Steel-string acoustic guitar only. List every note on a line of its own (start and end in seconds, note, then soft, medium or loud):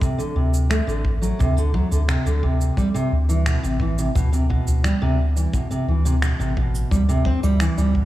0.01 0.18 C3 medium
0.18 0.34 D3 medium
0.36 0.68 C3 medium
0.70 0.80 A3 medium
0.87 1.04 D3 medium
1.22 1.38 F#3 medium
1.39 1.55 C3 medium
1.57 1.72 D3 medium
1.74 1.89 F#3 medium
1.91 2.01 D3 medium
2.08 2.25 C3 medium
2.26 2.41 D3 medium
2.43 2.76 C3 medium
2.78 2.87 G3 medium
2.94 3.11 C3 medium
3.29 3.45 E3 medium
3.46 3.61 B2 medium
3.63 3.79 C3 medium
3.81 3.96 E3 medium
3.99 4.08 C3 medium
4.15 4.32 B2 medium
4.33 4.48 C3 medium
4.50 4.82 B2 medium
4.84 4.94 G3 medium
5.02 5.18 C3 medium
5.37 5.52 E3 medium
5.53 5.69 B2 medium
5.71 5.86 C3 medium
5.88 6.03 E3 medium
6.05 6.15 C3 medium
6.22 6.38 B2 medium
6.40 6.55 C3 medium
6.57 6.89 B2 medium
6.91 7.01 G3 medium
7.09 7.25 C3 medium
7.26 7.41 C4 loud
7.43 7.58 G3 medium
7.60 7.75 E3 medium
7.78 7.93 G3 medium
7.95 8.05 B2 medium